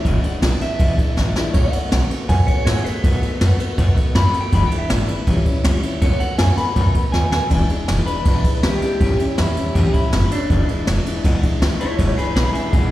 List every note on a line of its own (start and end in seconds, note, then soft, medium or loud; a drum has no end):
0.05 0.17 E1 loud
0.05 0.23 E2 medium
0.05 0.24 B2 medium
0.05 0.24 E3 medium
0.05 0.24 G#3 medium
0.05 0.23 D4 medium
0.05 0.22 E4 medium
0.05 0.24 E5 medium
0.05 kick loud
0.05 ride medium
0.23 0.41 E3 soft
0.23 0.42 G#3 soft
0.23 0.43 D4 soft
0.23 0.42 E4 medium
0.23 0.41 F#5 medium
0.23 muted upright bass stroke medium
0.23 ride medium
0.41 0.54 B1 loud
0.41 0.61 E3 medium
0.41 0.61 G#3 medium
0.41 0.61 D4 medium
0.41 0.60 E4 medium
0.41 0.60 E5 medium
0.41 snare loud
0.41 ride medium
0.61 0.79 E3 soft
0.61 0.79 G#3 medium
0.61 0.79 D4 medium
0.61 0.79 E4 medium
0.61 1.34 E5 loud
0.61 muted upright bass stroke medium
0.61 ride medium
0.79 0.92 B1 medium
0.79 0.98 E2 medium
0.79 0.98 B2 medium
0.79 0.98 E3 medium
0.79 0.98 G#3 medium
0.79 0.98 D4 medium
0.79 0.96 E4 medium
0.79 kick loud
0.79 ride medium
0.98 1.16 E3 soft
0.98 1.17 G#3 medium
0.98 1.17 D4 soft
0.98 1.16 E4 medium
0.98 muted upright bass stroke medium
0.98 kick medium
0.98 ride medium
1.17 1.30 A1 medium
1.17 1.35 E3 medium
1.17 1.36 G#3 medium
1.17 1.35 D4 medium
1.17 1.34 E4 medium
1.17 snare medium
1.35 1.54 E3 soft
1.35 1.55 G#3 medium
1.35 1.55 D4 medium
1.35 1.54 E4 medium
1.35 muted upright bass stroke medium
1.35 snare medium
1.54 1.67 B1 loud
1.54 1.73 B2 medium
1.54 1.73 D#3 medium
1.54 1.73 A3 medium
1.54 1.73 B3 medium
1.54 1.72 F#4 medium
1.54 1.72 C#5 medium
1.54 kick loud
1.54 ride medium
1.72 1.91 A3 soft
1.72 1.91 B3 medium
1.72 1.92 F#4 soft
1.72 2.26 F#5 medium
1.72 muted upright bass stroke medium
1.72 ride medium
1.91 2.04 B1 loud
1.91 2.10 D#3 medium
1.91 2.10 A3 medium
1.91 2.09 B3 medium
1.91 2.08 F#4 medium
1.91 snare loud
1.91 ride medium
2.09 2.29 A3 soft
2.09 2.29 B3 soft
2.09 2.28 F#4 medium
2.09 muted upright bass stroke medium
2.09 ride medium
2.29 2.41 F#2 loud
2.29 2.47 B2 medium
2.29 2.48 D#3 medium
2.29 2.48 A3 medium
2.29 2.48 B3 medium
2.29 2.46 F#4 medium
2.29 2.47 G#5 medium
2.29 kick loud
2.29 ride medium
2.47 2.65 A3 soft
2.47 2.66 B3 soft
2.47 2.66 F#4 medium
2.47 2.65 C#5 loud
2.47 muted upright bass stroke medium
2.47 kick medium
2.47 ride medium
2.65 2.79 A2 medium
2.65 2.85 D#3 medium
2.65 2.85 A3 medium
2.65 2.84 B3 medium
2.65 2.83 F#4 medium
2.65 2.84 G#4 medium
2.65 snare loud
2.65 ride medium
2.84 3.03 A3 soft
2.84 3.04 B3 soft
2.84 3.03 F#4 medium
2.84 3.93 B4 loud
2.84 muted upright bass stroke medium
2.84 ride medium
3.04 3.16 B1 medium
3.04 3.22 B2 medium
3.04 3.22 D#3 medium
3.04 3.23 A3 medium
3.04 3.22 B3 medium
3.04 3.21 F#4 medium
3.04 kick loud
3.04 ride medium
3.22 3.41 A3 soft
3.22 3.41 B3 medium
3.22 3.41 F#4 medium
3.22 muted upright bass stroke medium
3.22 ride medium
3.41 3.53 F#2 medium
3.41 3.59 D#3 medium
3.41 3.60 A3 medium
3.41 3.59 B3 medium
3.41 3.58 F#4 medium
3.41 snare loud
3.41 ride medium
3.59 3.78 A3 medium
3.59 3.78 B3 medium
3.59 3.78 F#4 medium
3.59 muted upright bass stroke medium
3.59 ride medium
3.78 3.91 F#2 medium
3.78 3.97 B2 medium
3.78 3.97 D#3 medium
3.78 3.97 A3 loud
3.78 3.96 B3 loud
3.78 3.95 F#4 medium
3.78 kick loud
3.78 ride medium
3.96 4.15 A3 medium
3.96 4.15 B3 medium
3.96 4.15 F#4 medium
3.96 muted upright bass stroke medium
3.96 kick medium
3.96 ride medium
4.15 4.28 F#2 loud
4.15 4.34 D#3 medium
4.15 4.34 A3 medium
4.15 4.33 B3 medium
4.15 4.32 F#4 medium
4.15 4.40 B5 loud
4.15 snare loud
4.15 ride medium
4.33 4.53 A3 soft
4.33 4.53 B3 medium
4.33 4.52 F#4 medium
4.33 muted upright bass stroke medium
4.33 ride medium
4.41 4.52 G5 medium
4.52 4.65 E1 loud
4.52 4.71 E2 medium
4.52 4.71 B2 medium
4.52 4.71 E3 medium
4.52 4.71 G#3 medium
4.52 4.70 D4 medium
4.52 4.70 E4 medium
4.52 4.65 B5 loud
4.52 kick loud
4.52 ride medium
4.66 4.78 G5 medium
4.71 4.87 E3 soft
4.71 4.88 G#3 medium
4.71 4.89 D4 soft
4.71 4.90 E4 medium
4.71 muted upright bass stroke medium
4.71 ride medium
4.78 4.92 E5 medium
4.89 5.02 G#1 loud
4.89 5.08 E3 medium
4.89 5.07 G#3 medium
4.89 5.06 D4 medium
4.89 5.06 E4 medium
4.89 5.04 D5 medium
4.89 snare loud
4.89 ride loud
5.04 5.27 D4 medium
5.04 5.26 E4 medium
5.04 5.76 B4 loud
5.08 5.26 E3 soft
5.08 5.27 G#3 soft
5.08 ride medium
5.27 5.40 A1 medium
5.27 5.46 A2 medium
5.27 5.46 E3 loud
5.27 5.46 G3 medium
5.27 5.45 C#4 medium
5.27 5.44 E4 medium
5.27 kick loud
5.27 ride medium
5.46 5.64 G3 soft
5.46 5.65 C#4 medium
5.46 5.64 E4 medium
5.46 kick medium
5.46 ride medium
5.64 5.78 C#2 medium
5.64 5.83 E3 medium
5.64 5.83 G3 medium
5.64 5.84 C#4 medium
5.64 5.82 E4 medium
5.64 snare loud
5.64 ride medium
5.83 6.03 G3 medium
5.83 6.03 C#4 medium
5.83 6.02 E4 medium
5.83 muted upright bass stroke medium
5.83 ride medium
6.01 6.14 B1 loud
6.01 6.21 B2 medium
6.01 6.21 D#3 medium
6.01 6.21 A3 medium
6.01 6.21 B3 medium
6.01 6.20 F#4 medium
6.01 6.20 C#5 loud
6.01 kick loud
6.01 ride medium
6.20 6.39 A3 soft
6.20 6.40 B3 medium
6.20 6.40 F#4 medium
6.20 6.38 F#5 medium
6.20 muted upright bass stroke medium
6.20 ride medium
6.38 6.52 F#2 medium
6.38 6.58 D#3 medium
6.38 6.59 A3 medium
6.38 6.59 B3 medium
6.38 6.57 F#4 medium
6.38 6.57 G#5 medium
6.38 snare loud
6.38 ride medium
6.57 6.76 A3 soft
6.57 6.76 B3 medium
6.57 6.76 F#4 medium
6.57 7.12 B5 loud
6.57 muted upright bass stroke medium
6.57 ride medium
6.76 6.89 F#2 medium
6.76 6.95 B2 medium
6.76 6.95 D#3 medium
6.76 6.95 A3 medium
6.76 6.95 B3 medium
6.76 6.94 F#4 medium
6.76 kick loud
6.76 ride medium
6.95 7.13 A3 soft
6.95 7.14 B3 medium
6.95 7.14 F#4 medium
6.95 kick medium
6.95 ride medium
7.12 7.26 D#2 medium
7.12 7.32 D#3 medium
7.12 7.32 A3 medium
7.12 7.32 B3 medium
7.12 7.30 F#4 medium
7.12 7.31 G#5 medium
7.12 snare medium
7.32 7.51 A3 medium
7.32 7.50 B3 soft
7.32 7.51 F#4 medium
7.32 7.50 G#5 medium
7.32 muted upright bass stroke medium
7.32 snare medium
7.50 7.63 E1 loud
7.50 7.69 E2 medium
7.50 7.69 B2 medium
7.50 7.69 E3 medium
7.50 7.69 G#3 medium
7.50 7.69 D4 medium
7.50 7.68 E4 medium
7.50 kick loud
7.50 ride medium
7.69 7.87 E3 soft
7.69 7.88 G#3 medium
7.69 7.89 D4 medium
7.69 7.88 E4 medium
7.69 muted upright bass stroke medium
7.69 ride medium
7.88 8.01 E1 medium
7.88 8.07 E3 medium
7.88 8.07 G#3 medium
7.88 8.07 D4 medium
7.88 8.06 E4 medium
7.88 snare loud
7.88 ride loud
8.06 8.25 E3 soft
8.06 8.26 G#3 soft
8.06 8.26 D4 medium
8.06 8.26 E4 medium
8.06 8.61 B4 loud
8.06 muted upright bass stroke medium
8.06 ride medium
8.25 8.38 B1 medium
8.25 8.45 E2 medium
8.25 8.45 B2 medium
8.25 8.45 E3 medium
8.25 8.45 G#3 medium
8.25 8.45 D4 medium
8.25 8.44 E4 medium
8.25 kick loud
8.25 ride medium
8.44 8.62 E3 medium
8.44 8.63 G#3 medium
8.44 8.64 D4 medium
8.44 8.63 E4 medium
8.44 muted upright bass stroke medium
8.44 kick medium
8.44 ride medium
8.63 8.76 D2 medium
8.63 8.82 E3 medium
8.63 8.82 G#3 medium
8.63 8.83 D4 medium
8.63 8.82 E4 medium
8.63 8.81 G4 loud
8.63 snare loud
8.63 ride medium
8.82 9.01 E3 soft
8.82 9.02 G#3 soft
8.82 9.01 D4 medium
8.82 9.01 E4 medium
8.82 9.36 G4 medium
8.82 muted upright bass stroke medium
8.82 ride medium
9.00 9.13 A1 loud
9.00 9.20 A2 medium
9.00 9.20 E3 medium
9.00 9.20 G3 medium
9.00 9.20 C#4 medium
9.00 9.19 E4 medium
9.00 kick loud
9.00 ride medium
9.19 9.37 G3 soft
9.19 9.38 C#4 soft
9.19 9.38 E4 medium
9.19 muted upright bass stroke medium
9.19 ride medium
9.37 9.51 E2 loud
9.37 9.56 E3 medium
9.37 9.57 G3 medium
9.37 9.57 C#4 medium
9.37 9.74 E4 medium
9.37 9.55 E4 medium
9.37 snare loud
9.37 ride medium
9.56 9.74 G3 soft
9.56 9.75 C#4 medium
9.56 9.75 E4 medium
9.56 muted upright bass stroke medium
9.56 ride medium
9.74 9.88 E2 loud
9.74 9.94 A2 medium
9.74 9.94 E3 medium
9.74 9.94 G3 medium
9.74 9.94 C#4 loud
9.74 9.93 E4 medium
9.74 9.93 G4 medium
9.74 kick loud
9.74 ride medium
9.94 10.12 G3 soft
9.94 10.13 C#4 medium
9.94 10.30 E4 medium
9.94 10.12 E4 medium
9.94 muted upright bass stroke medium
9.94 kick medium
9.94 ride medium
10.13 10.25 F#1 medium
10.13 10.31 E3 medium
10.13 10.32 G3 medium
10.13 10.32 C#4 medium
10.13 10.31 E4 medium
10.13 snare loud
10.13 ride medium
10.31 10.51 G3 soft
10.31 10.51 C#4 medium
10.31 10.68 D4 loud
10.31 10.50 E4 medium
10.31 ride medium
10.50 10.63 E1 loud
10.50 10.69 E2 medium
10.50 10.69 B2 medium
10.50 10.69 E3 medium
10.50 10.69 G#3 medium
10.50 10.68 D4 medium
10.50 10.68 E4 medium
10.50 kick loud
10.50 ride medium
10.69 10.86 E3 soft
10.69 10.87 G#3 medium
10.69 10.88 D4 medium
10.69 10.87 E4 medium
10.69 muted upright bass stroke medium
10.69 ride medium
10.87 11.00 E1 medium
10.87 11.06 E3 medium
10.87 11.06 G#3 medium
10.87 11.05 D4 medium
10.87 11.05 E4 medium
10.87 snare loud
10.87 ride loud
11.06 11.24 E3 medium
11.06 11.24 G#3 medium
11.06 11.24 D4 medium
11.06 11.24 E4 medium
11.06 muted upright bass stroke medium
11.06 ride medium
11.24 11.37 B1 loud
11.24 11.43 E2 medium
11.24 11.43 B2 loud
11.24 11.43 E3 medium
11.24 11.43 G#3 loud
11.24 11.43 D4 loud
11.24 11.42 E4 loud
11.24 kick loud
11.24 ride medium
11.43 11.61 E3 soft
11.43 11.62 G#3 medium
11.43 11.62 D4 medium
11.43 11.62 E4 medium
11.43 kick medium
11.43 ride medium
11.62 11.74 D2 medium
11.62 11.80 E3 medium
11.62 11.81 G#3 medium
11.62 11.80 D4 medium
11.62 11.80 E4 medium
11.62 snare loud
11.62 ride medium
11.80 11.98 E3 soft
11.80 11.98 G#3 medium
11.80 11.99 D4 medium
11.80 11.96 E4 medium
11.80 11.99 E4 medium
11.80 11.97 C#5 loud
11.80 muted upright bass stroke medium
11.80 ride medium
11.98 12.11 E1 loud
11.98 12.17 E2 medium
11.98 12.18 B2 medium
11.98 12.18 E3 medium
11.98 12.17 G#3 medium
11.98 12.16 D4 medium
11.98 12.16 E4 medium
11.98 12.15 E4 medium
11.98 12.17 C#5 medium
11.98 kick loud
11.98 ride medium
12.17 12.35 E3 soft
12.17 12.35 G#3 medium
12.17 12.36 D4 medium
12.17 12.36 E4 medium
12.17 12.33 G#4 medium
12.17 12.34 B4 medium
12.17 muted upright bass stroke medium
12.17 ride medium
12.34 12.48 B1 loud
12.34 12.55 E3 medium
12.34 12.55 G#3 medium
12.34 12.54 D4 medium
12.34 12.53 E4 medium
12.34 12.52 G#4 medium
12.34 12.52 B4 medium
12.34 snare loud
12.34 ride medium
12.53 12.72 E3 soft
12.53 12.73 G#3 soft
12.53 12.73 D4 medium
12.53 12.69 E4 medium
12.53 12.73 E4 medium
12.53 12.69 G#4 medium
12.53 muted upright bass stroke medium
12.53 ride medium
12.70 12.86 B1 loud
12.70 12.91 E2 medium
12.70 12.91 B2 loud
12.70 12.91 E3 medium
12.70 12.91 G#3 medium
12.70 12.91 D4 medium
12.70 12.89 E4 medium
12.70 12.91 E4 loud
12.70 12.90 G#4 medium
12.70 kick loud
12.70 ride medium